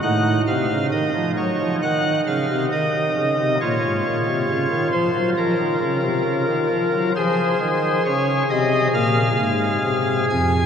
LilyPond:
<<
  \new Staff \with { instrumentName = "Pipe organ" } { \time 4/4 \key bes \minor \tempo 4 = 67 << { ges''8 f''8 ees''8 des''8 ges''8 f''8 ees''4 | des''4. c''8 bes'2 | \key f \minor c''4 des''8 ees''8 f''4. aes''8 | } \\ { ees'1 | f'1 | aes'1 | } >> }
  \new Staff \with { instrumentName = "Pipe organ" } { \clef bass \time 4/4 \key bes \minor a,8 c16 des16 ees16 f16 ges16 f16 ees8 des16 c16 ees8 des16 c16 | bes,16 aes,16 bes,16 c16 des16 ees16 f16 ges16 f16 ees16 des16 c16 des16 ees16 f16 ges16 | \key f \minor f8 ees8 des8 c8 bes,8 aes,8 c8 f,8 | }
>>